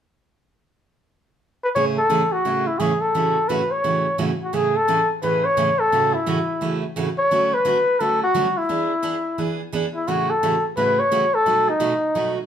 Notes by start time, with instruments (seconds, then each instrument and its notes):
1.64 flugelhorn B4
1.75 steel-string acoustic guitar A2 C#3 E3 A3 C#4 G#4, flugelhorn C#5
1.98 flugelhorn A4
2.09 steel-string acoustic guitar A2 C#3 E3 A3 C#4 G#4
2.32 flugelhorn F#4
2.45 steel-string acoustic guitar A2 C#3 E3 A3 C#4 G#4
2.67 flugelhorn E4
2.79 steel-string acoustic guitar A2 C#3 E3 A3 C#4 G#4, flugelhorn G#4
3.01 flugelhorn A4
3.14 steel-string acoustic guitar A2 C#3 E3 A3 C#4 F#4
3.48 steel-string acoustic guitar A2 C#3 E3 A3 C#4 F#4, flugelhorn B4
3.71 flugelhorn C#5
3.84 steel-string acoustic guitar A2 C#3 E3 A3 C#4 F#4
4.18 steel-string acoustic guitar A2 C#3 E3 A3 C#4 F#4
4.42 flugelhorn F#4
4.53 steel-string acoustic guitar A2 C#3 E3 A3 C#4 G#4, flugelhorn G#4
4.76 flugelhorn A4
4.88 steel-string acoustic guitar A2 C#3 E3 A3 C#4 G#4
5.22 steel-string acoustic guitar A2 C#3 E3 A3 C#4 G#4, flugelhorn B4
5.45 flugelhorn C#5
5.57 steel-string acoustic guitar A2 C#3 E3 A3 C#4 G#4
5.79 flugelhorn A4
5.92 steel-string acoustic guitar A2 C#3 E3 A3 C#4 F#4
6.14 flugelhorn E4
6.26 steel-string acoustic guitar A2 C#3 E3 A3 C#4 F#4
6.61 steel-string acoustic guitar A2 C#3 E3 A3 C#4 F#4
6.96 steel-string acoustic guitar A2 C#3 E3 A3 C#4 F#4
7.18 flugelhorn C#5
7.31 steel-string acoustic guitar D3 F#3 A3 C#4 F#4
7.54 flugelhorn B4
7.65 steel-string acoustic guitar D3 F#3 A3 C#4 F#4
8.00 steel-string acoustic guitar D3 F#3 A3 C#4 F#4, flugelhorn A4
8.23 flugelhorn F#4
8.34 steel-string acoustic guitar D3 F#3 A3 C#4 F#4
8.58 flugelhorn E4
8.69 steel-string acoustic guitar E3 B3 D4 G#4
9.03 steel-string acoustic guitar E3 B3 D4 G#4
9.38 steel-string acoustic guitar E3 B3 D4 G#4
9.72 steel-string acoustic guitar E3 B3 D4 G#4
9.95 flugelhorn E4
10.07 steel-string acoustic guitar A2 C#3 E3 A3 C#4 F#4, flugelhorn F#4
10.30 flugelhorn A4
10.43 steel-string acoustic guitar A2 C#3 E3 A3 C#4 F#4
10.77 steel-string acoustic guitar A2 C#3 E3 A3 C#4 F#4, flugelhorn B4
10.99 flugelhorn C#5
11.11 steel-string acoustic guitar A2 C#3 E3 A3 C#4 F#4
11.35 flugelhorn A4
11.46 steel-string acoustic guitar B2 F#3 A3 D#4 F#4
11.69 flugelhorn D#4
11.80 steel-string acoustic guitar B2 F#3 A3 D#4 F#4
12.15 steel-string acoustic guitar B2 F#3 A3 D#4 F#4